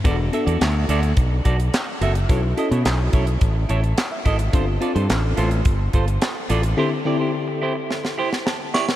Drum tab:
HH |x-xxx-xxx-xxx-xx|x-xxx-xxx-xxx-xx|x-xxx-xxx-xxx-xx|----------------|
CP |----x-------x---|----x-------x---|----x-------x---|----------------|
SD |----o-------o---|----o-------o---|----o-------o---|--------oo-oo-oo|
BD |o-------o-o-----|o-----o-o-----o-|o-------o-o-----|----------------|